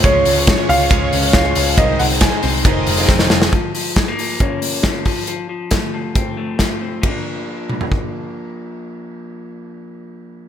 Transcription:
<<
  \new Staff \with { instrumentName = "Upright piano" } { \time 4/4 \key bes \minor \tempo 4 = 137 des''4. f''4. f''4 | ees''8 ges''8 aes''2 r4 | r1 | r1 |
r1 | r1 | }
  \new Staff \with { instrumentName = "String machine" } { \time 4/4 \key bes \minor << { <f' des''>1 | <ees' c''>2 <f' ees''>2 | r1 | r1 |
r1 | r1 | } \\ { aes1 | aes1 | r1 | r1 |
r1 | r1 | } >> }
  \new Staff \with { instrumentName = "Clean electric guitar" } { \clef bass \time 4/4 \key bes \minor <aes f'>8 des'8 aes8 f'8 aes8 des'8 f'8 des'8 | <ees c'>8 aes8 ees8 c'8 ees8 aes8 c'8 aes8 | f8 f8 aes16 bes16 f8 des'8 bes8 f8 f8 | f8 f8 a8 f8 c'8 a8 f8 c'8 |
<f bes d'>1~ | <f bes d'>1 | }
  \new Staff \with { instrumentName = "Twelve-string acoustic guitar" } { \clef bass \time 4/4 \key bes \minor <des f aes des'>8. <f aes des'>8 <f aes des'>8. <des f aes des'>8. <des f aes des'>8 <des f aes des'>8. | <c ees aes c'>8. <ees aes c'>8 <ees aes c'>8. <f, c ees aes c'>8. <f, c ees aes c'>8 <f, c ees aes c'>8. | r1 | r1 |
r1 | r1 | }
  \new Staff \with { instrumentName = "Picked electric bass" } { \clef bass \time 4/4 \key bes \minor des,8 des,8. r16 des,8 des,8 des,8 des,8 des,8 | c,8 c,8. r16 c,8 f,,8 f,,8 f,,8 f,,8 | r1 | r1 |
r1 | r1 | }
  \new DrumStaff \with { instrumentName = "Drums" } \drummode { \time 4/4 <bd cymr>8 hho8 <bd cymr sn>8 hho8 <hhp bd cymr>8 hho8 <bd cymr sn>8 hho8 | <hhp bd cymr>8 hho8 <hhp bd cymr sn>8 hho8 <hhp bd cymr>8 hho8 <bd sn>16 sn16 sn16 sn16 | <hh bd>8 hho8 <hh bd sn>8 hho8 <hh bd>8 hho8 <hh bd sn>8 <hho bd>8 | hh4 <hh bd sn>4 <hh bd>4 <hh bd sn>4 |
<bd cymr>4 r8 toml16 tomfh16 bd4 r4 | r4 r4 r4 r4 | }
>>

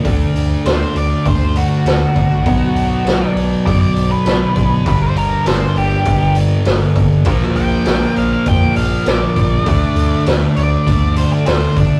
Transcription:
<<
  \new Staff \with { instrumentName = "Lead electric guitar" } { \time 4/4 \key d \phrygian \tempo 4 = 100 r4 c''8 d''8 c''8 fis'4.~ | fis'4. r8 d''16 d''8 b'4~ b'16~ | b'16 c''16 bes'8 c''8 g'4 r4. | r8 g''4 f''16 f''16 g''8 f''8 d''4~ |
d''4 r8 d''4 c''16 d'16 c''8 d'8 | }
  \new Staff \with { instrumentName = "Clean electric guitar" } { \time 4/4 \key d \phrygian d8 d8 a8 d'8 fis'8 d'8 a8 d'8 | b,8 fis8 b8 d'8 fis'8 d'8 b8 d'8 | g,8 g8 bes8 d'8 g'8 d'8 bes8 d'8 | bes,8 f8 bes8 d'8 f'8 d'8 bes8 d'8 |
d8 d8 a8 d'8 fis'8 d'8 a8 d'8 | }
  \new Staff \with { instrumentName = "Distorted electric guitar" } { \clef bass \time 4/4 \key d \phrygian <d a d'>1 | <b, fis b>1 | <g, d g>1 | <bes, f bes>1 |
<d a d'>1 | }
  \new Staff \with { instrumentName = "Distorted electric guitar" } { \clef bass \time 4/4 \key d \phrygian r1 | r1 | <g, d g>1 | <bes, f bes>1 |
<d a d'>1 | }
  \new Staff \with { instrumentName = "Sub bass" } { \clef bass \time 4/4 \key d \phrygian d,8 d,8 d,8 d,8 d,4 d,8 bes,,8 | b,,8 b,,8 b,,8 b,,8 fis,8 b,,8 b,,8 b,,8 | g,,8 g,,8 g,,8 g,,8 g,,4 g,,8 g,,8 | bes,,8 bes,,8 bes,,8 bes,,8 f,8 bes,,8 bes,,8 bes,,8 |
d,8 d,8 d,8 d,8 d,4 d,8 c,8 | }
  \new DrumStaff \with { instrumentName = "Drums" } \drummode { \time 4/4 <hho bd>8 hho8 <hho sn>8 hho8 <hho bd>8 hho8 <hho sn>8 <hho bd>8 | <hho bd>8 hho8 <hho sn>8 hho8 <hho bd>8 hho8 <hho sn>8 <hho bd>8 | <hho bd>8 hho8 <hho sn>8 hho8 <hho bd>8 hho8 <hho sn>8 <hho bd>8 | <hho bd>16 sn16 hho8 <hho sn>8 hho8 <hho bd>8 hho8 <hho sn>8 <hho bd>8 |
<hho bd>8 hho8 <hho sn>8 hho8 <hho bd>8 hho8 <hho sn>8 <hho bd>8 | }
>>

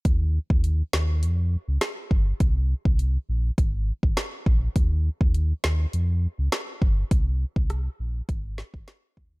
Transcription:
<<
  \new Staff \with { instrumentName = "Sub bass" } { \clef bass \time 4/4 \key bes \dorian \tempo 4 = 102 ees,8. ees,8. ees,8 f,8. des,16 r8 g,,8 | c,8. c,8. bes,,8 aes,,8. aes,,16 r8 bes,,8 | ees,8. ees,8. ees,8 f,8. des,16 r8 g,,8 | c,8. c,8. bes,,8 aes,,8. aes,,16 r8 ees,8 | }
  \new DrumStaff \with { instrumentName = "Drums" } \drummode { \time 4/4 <hh bd>8. bd16 hh8 sn8 hh4 <hh ss sn>8 bd8 | <hh bd>8. bd16 hh4 <hh bd>8. bd16 <hh ss sn>8 bd8 | <hh bd>8. bd16 hh8 sn8 hh4 <hh ss sn>8 bd8 | <hh bd>8. bd16 <hh ss>4 <hh bd>8 sn16 bd16 <hh sn>8 bd8 | }
>>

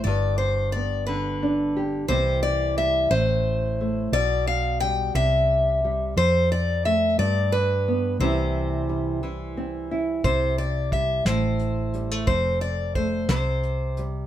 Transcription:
<<
  \new Staff \with { instrumentName = "Steel-string acoustic guitar" } { \time 6/8 \key c \major \tempo 4. = 59 d''8 c''8 d''8 b'4 r8 | c''8 d''8 e''8 c''4. | d''8 f''8 g''8 e''4. | c''8 d''8 e''8 d''8 b'4 |
c''2~ c''8 r8 | c''8 d''8 e''8 c''4. | c''8 d''8 c''8 c''4 r8 | }
  \new Staff \with { instrumentName = "Nylon-string guitar" } { \clef bass \time 6/8 \key c \major << { r4 b4 d'8 g'8 | <e g c'>4 g8 r4 a8 | r4 g4. g8 | r4 a8 r4 b8 |
<e g c' e'>4 g4 c'8 e'8~ | e'4 g8 r4 g16 a16 | r4 a8 r4 g8 | } \\ { g,4. d4. | c4. a,4. | b,4. c4. | f,4. g,4. |
c4. e4. | c4. a,4. | f,4. c4. | } >> }
  \new Staff \with { instrumentName = "Fingered electric bass" } { \clef bass \time 6/8 \key c \major g,,2. | c,4. a,,4. | b,,4. c,4. | f,4. g,4. |
c,2. | c,4. a,,4. | f,,4. c,4. | }
  \new DrumStaff \with { instrumentName = "Drums" } \drummode { \time 6/8 r4. r4. | r4. r4. | r4. r4. | r4. r4. |
r4. r4. | <hh bd>8 hh8 <hh bd>8 <hh sn>8 hh8 hh8 | <hh bd>8 hh8 <hh bd>8 <hh sn>8 hh8 hh8 | }
>>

